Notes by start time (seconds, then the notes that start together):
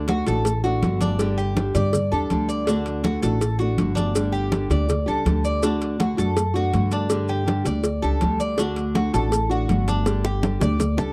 Already playing: D2
0.08 D3 A3 D4 F#4, cowbell, high conga, maracas
0.26 A1 A3 D4 F#4 A4, cowbell, high conga, maracas
0.45 muted nylon-string guitar stroke, cowbell, high conga, maracas
0.64 A3 D4 F#4, high conga, maracas
0.83 G1 D3 A3 D4 F#4, cowbell, high conga, maracas
1.01 D4, cowbell, high conga, maracas
1.19 D3 G3 D4 G4, cowbell, high conga, maracas
1.38 G4, high conga, maracas
1.56 D3 G3 D4 G4, cowbell, high conga, maracas
1.75 G2 G3 D4 G4 D5, cowbell, high conga, low conga, maracas
1.93 muted nylon-string guitar stroke, cowbell, high conga, low conga, maracas
2.12 E2 G3 D4 G4 A4, maracas
2.30 D2 D3 G3 D4 G4, cowbell, high conga, maracas
2.49 D5, high conga, maracas
2.67 D3 A3 D4 F#4, cowbell, high conga, maracas
2.86 cowbell, high conga, maracas
3.04 D3 A3 D4 F#4, cowbell, high conga, maracas
3.22 A1 A3 D4 F#4 A4, cowbell, high conga, maracas
3.41 muted nylon-string guitar stroke, cowbell, high conga, maracas
3.59 A3 D4 F#4, high conga, maracas
3.78 G1 D3 A3 D4 F#4, cowbell, high conga, maracas
3.95 D4, cowbell, high conga, maracas
4.14 D3 G3 D4 G4, cowbell, high conga, maracas
4.32 G4, high conga, maracas
4.51 D3 G3 D4 G4, cowbell, high conga, maracas
4.70 D2 G3 D4 G4 D5, cowbell, high conga, low conga, maracas
4.89 muted nylon-string guitar stroke, cowbell, high conga, low conga, maracas
5.06 C#2 G3 D4 G4 A4, high conga, maracas
5.25 D2 D3 G3 D4 G4, cowbell, high conga, maracas
5.45 D5, high conga, maracas
5.62 D3 A3 D4 F#4, cowbell, high conga, maracas
5.81 cowbell, high conga, maracas
5.99 D3 A3 D4 F#4, cowbell, high conga, maracas
6.17 F#2 A3 D4 F#4 A4, cowbell, high conga, maracas
6.37 muted nylon-string guitar stroke, cowbell, high conga, maracas
6.54 A3 D4 F#4, high conga, maracas
6.73 G2 D3 A3 D4 F#4, cowbell, high conga, maracas
6.91 D4, cowbell, maracas
7.10 D3 G3 D4 G4, cowbell, high conga, maracas
7.28 G4, high conga, maracas
7.46 D3 G3 D4 G4, cowbell, high conga, maracas
7.65 D2 G3 D4 G4 D5, cowbell, high conga, low conga, maracas
7.84 muted nylon-string guitar stroke, cowbell, high conga, maracas
8.02 C#2 G3 D4 G4 A4, high conga, maracas
8.21 D2 D3 G3 D4 G4, cowbell, high conga, maracas
8.40 D5, high conga, maracas
8.58 D3 A3 D4 F#4, cowbell, high conga, maracas
8.76 cowbell, high conga, maracas
8.95 D3 A3 D4 F#4, cowbell, high conga, maracas
9.13 A1 A3 D4 F#4 A4, cowbell, high conga, maracas
9.31 muted nylon-string guitar stroke, cowbell, high conga, maracas
9.50 A3 D4 F#4, high conga, maracas
9.68 G1 D3 A3 D4 F#4, cowbell, high conga, maracas
9.88 D4, cowbell, high conga, maracas
10.05 D3 G3 D4 G4, cowbell, high bongo, maracas
10.24 G4, high bongo, high conga, maracas
10.42 D3 G3 D4 G4, cowbell, low bongo, high conga, maracas
10.60 D2 G3 D4 G4 D5, cowbell, low bongo, high conga, low conga, maracas
10.79 muted nylon-string guitar stroke, cowbell, low bongo, high conga, low conga, maracas
10.97 C#2 G3 D4 G4 A4, low bongo, high conga, maracas